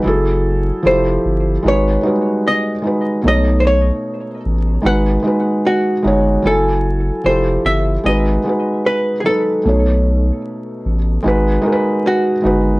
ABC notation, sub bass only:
X:1
M:4/4
L:1/8
Q:"Swing 16ths" 1/4=75
K:G#phr
V:1 name="Sub bass" clef=bass
F,,,2 =F,,, =G,,, ^G,,, z3 | B,,,2 z A,,, G,,, z2 =G,,, | F,,,2 =F,,, =G,,, ^G,,, z3 | B,,,2 z A,,, G,,, z2 =G,,, |]